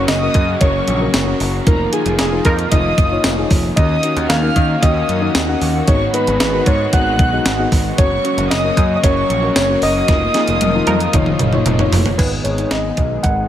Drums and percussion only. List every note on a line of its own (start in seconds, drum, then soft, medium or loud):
0.08 snare loud
0.08 closed hi-hat loud
0.08 tambourine medium
0.34 kick medium
0.34 closed hi-hat medium
0.61 kick medium
0.61 closed hi-hat medium
0.88 closed hi-hat medium
1.14 snare loud
1.14 closed hi-hat medium
1.14 tambourine medium
1.40 open hi-hat medium
1.67 kick loud
1.67 closed hi-hat medium
1.93 closed hi-hat medium
2.06 closed hi-hat medium
2.19 snare loud
2.19 closed hi-hat loud
2.19 tambourine medium
2.45 kick medium
2.45 closed hi-hat medium
2.59 closed hi-hat medium
2.72 kick medium
2.72 closed hi-hat medium
2.98 kick medium
2.98 closed hi-hat medium
3.24 snare loud
3.24 closed hi-hat medium
3.24 tambourine medium
3.51 kick medium
3.51 open hi-hat medium
3.77 kick loud
3.77 closed hi-hat medium
4.03 closed hi-hat medium
4.17 closed hi-hat medium
4.30 snare loud
4.30 closed hi-hat medium
4.30 tambourine medium
4.56 kick medium
4.56 closed hi-hat medium
4.83 kick medium
4.83 closed hi-hat medium
5.09 closed hi-hat medium
5.35 snare loud
5.35 closed hi-hat medium
5.35 tambourine medium
5.61 open hi-hat medium
5.88 kick loud
5.88 closed hi-hat medium
6.14 closed hi-hat medium
6.27 closed hi-hat medium
6.40 snare loud
6.40 closed hi-hat loud
6.40 tambourine medium
6.66 kick medium
6.66 closed hi-hat medium
6.93 kick medium
6.93 closed hi-hat medium
7.19 kick medium
7.19 closed hi-hat medium
7.46 snare loud
7.46 closed hi-hat medium
7.46 tambourine medium
7.72 kick medium
7.72 open hi-hat medium
7.98 kick loud
7.98 closed hi-hat medium
8.25 closed hi-hat medium
8.38 closed hi-hat medium
8.51 snare loud
8.51 closed hi-hat loud
8.51 tambourine medium
8.77 kick medium
8.77 closed hi-hat medium
9.04 kick medium
9.04 closed hi-hat medium
9.30 closed hi-hat medium
9.56 snare loud
9.56 closed hi-hat medium
9.56 tambourine medium
9.82 open hi-hat medium
10.08 kick loud
10.08 snare medium
10.08 closed hi-hat medium
10.34 snare medium
10.34 closed hi-hat medium
10.48 closed hi-hat medium
10.61 closed hi-hat loud
10.61 high tom medium
10.87 closed hi-hat medium
10.87 high tom medium
11.00 closed hi-hat medium
11.13 kick medium
11.13 closed hi-hat medium
11.13 mid tom medium
11.26 mid tom medium
11.39 closed hi-hat medium
11.39 mid tom loud
11.53 mid tom medium
11.66 closed hi-hat medium
11.66 mid tom loud
11.79 floor tom medium
11.92 floor tom loud
11.92 open hi-hat medium
12.06 floor tom medium
12.19 kick loud
12.19 closed hi-hat medium
12.19 crash medium
12.45 closed hi-hat medium
12.58 closed hi-hat medium
12.71 snare loud
12.71 closed hi-hat medium
12.97 kick medium
12.97 closed hi-hat medium
13.24 kick medium
13.24 closed hi-hat medium